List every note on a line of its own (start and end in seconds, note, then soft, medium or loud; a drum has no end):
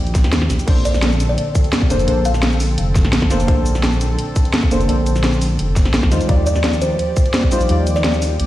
0.00 0.26 A#1 loud
0.00 0.64 F3 medium
0.00 0.69 G3 loud
0.00 0.65 C4 medium
0.00 0.69 D#4 medium
0.00 0.69 F4 medium
0.00 0.64 G4 medium
0.00 0.69 C5 loud
0.00 0.23 D5 loud
0.07 closed hi-hat soft
0.15 kick loud
0.15 snare soft
0.15 closed hi-hat medium
0.15 cabasa medium
0.24 0.49 D#2 loud
0.24 snare medium
0.24 closed hi-hat soft
0.33 snare loud
0.33 closed hi-hat loud
0.42 snare medium
0.50 0.58 A#1 medium
0.50 snare soft
0.50 closed hi-hat medium
0.50 cabasa medium
0.59 closed hi-hat soft
0.59 cabasa soft
0.66 1.36 A#1 loud
0.66 6.08 D3 medium
0.66 1.62 A#3 medium
0.66 6.08 C4 medium
0.66 1.62 D4 medium
0.66 6.08 A4 medium
0.66 1.63 A4 medium
0.66 1.63 C5 loud
0.66 kick loud
0.66 closed hi-hat loud
0.66 crash medium
0.85 1.06 D5 loud
0.85 closed hi-hat medium
0.85 cabasa medium
0.94 snare soft
0.94 cabasa soft
1.03 snare loud
1.03 closed hi-hat medium
1.12 cabasa soft
1.20 closed hi-hat medium
1.20 cabasa medium
1.29 1.55 D5 medium
1.38 closed hi-hat loud
1.55 kick loud
1.55 closed hi-hat medium
1.55 cabasa medium
1.64 closed hi-hat soft
1.73 snare loud
1.73 closed hi-hat medium
1.82 kick medium
1.89 2.06 F1 loud
1.89 2.05 A#3 loud
1.89 2.06 D4 medium
1.89 2.06 A4 medium
1.89 2.06 C5 loud
1.89 closed hi-hat medium
1.89 cabasa medium
1.99 closed hi-hat soft
1.99 cabasa soft
2.06 2.77 A#1 loud
2.06 3.02 A#3 medium
2.06 3.02 D4 medium
2.06 3.03 A4 medium
2.06 3.03 C5 loud
2.06 closed hi-hat medium
2.25 2.61 F5 loud
2.25 closed hi-hat medium
2.25 cabasa medium
2.34 snare soft
2.34 cabasa soft
2.43 snare loud
2.43 closed hi-hat medium
2.52 cabasa soft
2.60 open hi-hat medium
2.60 cabasa medium
2.78 3.07 F1 loud
2.78 closed hi-hat medium
2.96 kick loud
2.96 snare soft
2.96 closed hi-hat medium
2.96 cabasa medium
3.05 3.30 A#1 loud
3.05 snare medium
3.05 closed hi-hat soft
3.13 snare loud
3.13 closed hi-hat loud
3.22 kick medium
3.22 snare medium
3.30 3.47 F1 medium
3.30 3.45 A#3 loud
3.30 3.46 D4 medium
3.30 3.46 A4 medium
3.30 3.46 C5 loud
3.30 snare soft
3.30 closed hi-hat medium
3.30 cabasa medium
3.40 closed hi-hat soft
3.40 cabasa soft
3.46 4.17 A#1 loud
3.46 4.42 A#3 medium
3.46 4.43 D4 medium
3.46 4.43 A4 medium
3.46 4.43 C5 loud
3.46 kick loud
3.46 closed hi-hat loud
3.66 closed hi-hat medium
3.66 cabasa medium
3.75 snare soft
3.75 cabasa soft
3.83 snare loud
3.83 closed hi-hat medium
3.93 cabasa soft
4.01 closed hi-hat medium
4.01 cabasa medium
4.19 closed hi-hat medium
4.36 kick loud
4.36 closed hi-hat medium
4.36 cabasa medium
4.45 closed hi-hat soft
4.54 snare loud
4.54 closed hi-hat medium
4.63 kick medium
4.70 4.87 F1 loud
4.70 4.86 A#3 loud
4.70 4.87 D4 medium
4.70 4.87 A4 medium
4.70 4.87 C5 loud
4.70 closed hi-hat medium
4.70 cabasa medium
4.81 closed hi-hat soft
4.81 cabasa soft
4.87 5.58 A#1 loud
4.87 5.83 A#3 medium
4.87 5.83 D4 medium
4.87 5.84 A4 medium
4.87 5.84 C5 loud
4.87 closed hi-hat medium
5.06 closed hi-hat medium
5.06 cabasa medium
5.16 snare soft
5.16 cabasa soft
5.24 snare loud
5.24 closed hi-hat medium
5.33 cabasa soft
5.42 open hi-hat medium
5.42 cabasa medium
5.59 5.87 F1 loud
5.59 closed hi-hat medium
5.76 kick loud
5.76 snare soft
5.76 closed hi-hat medium
5.76 cabasa medium
5.85 6.10 A#1 loud
5.85 snare soft
5.85 closed hi-hat soft
5.94 snare loud
5.94 closed hi-hat medium
6.03 kick medium
6.03 snare medium
6.11 6.20 D#2 medium
6.11 8.47 F3 medium
6.11 6.26 G3 loud
6.11 6.27 D#4 medium
6.11 6.27 F4 medium
6.11 8.47 G4 medium
6.11 6.27 C5 loud
6.11 8.47 D5 medium
6.11 snare soft
6.11 closed hi-hat medium
6.11 cabasa medium
6.21 closed hi-hat soft
6.21 cabasa soft
6.27 6.98 D#2 loud
6.27 7.23 G3 medium
6.27 7.23 D#4 medium
6.27 7.24 F4 medium
6.27 7.24 D5 loud
6.27 kick loud
6.27 closed hi-hat medium
6.46 6.68 D5 loud
6.46 closed hi-hat medium
6.46 cabasa medium
6.56 snare soft
6.56 cabasa soft
6.64 snare loud
6.64 closed hi-hat medium
6.73 cabasa soft
6.82 6.88 C5 medium
6.82 closed hi-hat medium
6.82 cabasa medium
6.90 6.96 C5 medium
6.99 closed hi-hat medium
7.17 kick loud
7.17 closed hi-hat medium
7.17 cabasa medium
7.26 closed hi-hat soft
7.34 snare loud
7.34 closed hi-hat medium
7.43 kick medium
7.51 7.68 A#1 loud
7.51 7.67 G3 loud
7.51 7.67 D#4 medium
7.51 7.68 F4 medium
7.51 7.68 C5 loud
7.51 closed hi-hat medium
7.51 cabasa medium
7.61 closed hi-hat soft
7.61 cabasa soft
7.68 8.38 D#2 loud
7.68 8.47 G3 medium
7.68 8.47 D#4 medium
7.68 8.47 F4 medium
7.68 8.47 D5 loud
7.68 closed hi-hat medium
7.87 closed hi-hat medium
7.87 cabasa medium
7.96 8.31 D5 medium
7.96 snare soft
7.96 cabasa soft
8.04 snare loud
8.04 closed hi-hat medium
8.13 cabasa soft
8.22 open hi-hat medium
8.22 cabasa medium
8.40 8.47 A#1 loud
8.40 closed hi-hat medium